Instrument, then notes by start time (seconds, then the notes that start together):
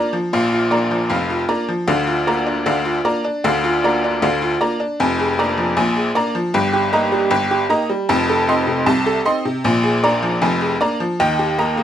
honky-tonk piano
Already playing: A#3 D4 D5 A#5
0.13 F3
0.33 A#1 A#2 F5
0.52 F4
0.71 A#3 D4 D5 A#5
0.91 F3
1.09 F1 F2 F5
1.30 F4
1.49 A#3 D4 D5 A#5
1.69 F3
1.87 D2 D3 F5
2.07 F4
2.27 A#3 D4 D5 A#5
2.47 D4
2.66 D2 D3 F5
2.85 F4
3.05 A#3 D4 D5 A#5
3.25 D4
3.44 D2 D3 F5
3.64 F4
3.84 A#3 D4 D5 A#5
4.04 D4
4.22 D2 D3 F5
4.42 F4
4.61 A#3 D4 D5 A#5
4.80 D4
5.00 F1 F2 G#5
5.19 G#4
5.39 A#3 D4 D5 A#5
5.58 F3
5.77 A#1 A#2 G#5
5.96 G#4
6.15 A#3 D4 D5 A#5
6.35 F3
6.54 G1 G2 G5
6.73 G4
6.93 A#3 D#4 D#5 A#5
7.12 G3
7.31 G1 G2 G5
7.51 G4
7.70 A#3 D#4 D#5 A#5
7.90 G3
8.09 F1 F2 A5
8.29 A4
8.49 C4 D#4 D#5 C6
8.67 C3
8.86 C2 C3 A5
9.06 A4
9.26 C4 D#4 D#5 C6
9.45 C3
9.64 A#1 A#2 G#5
9.83 G#4
10.04 A#3 D4 D5 A#5
10.23 F3
10.42 F1 F2 G#5
10.61 G#4
10.81 A#3 D4 D5 A#5
11.00 F3
11.20 D#2 D#3 G5
11.39 G4
11.58 A#3 D#4 D#5 A#5
11.77 A#3